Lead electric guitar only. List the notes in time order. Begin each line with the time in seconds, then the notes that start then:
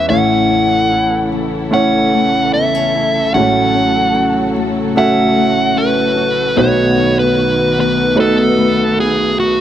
0.10 F#5
1.74 F#5
2.54 E5
3.34 F#5
4.98 F#5
5.78 B4
6.58 C#5
7.19 B4
7.80 B4
8.20 A4
9.00 G#4
9.40 F#4